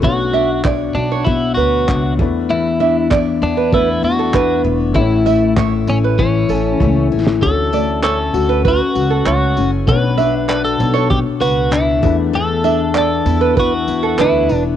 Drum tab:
TB |----------------|----------------|--x---x---x-----|--x---x---x---x-|
CP |----x-------x---|----x-------x---|----x-----------|----x-------x---|
SD |----------------|----------------|---------------o|----------------|
BD |o---o---o---o-o-|----o---o---o---|o---o---o---o---|o-------o-------|

TB |--x---x---x---x-|--x---x---x---x-|
CP |----x-------x---|----x-------x---|
SD |----------------|----------------|
BD |o-------o-----o-|--------o-------|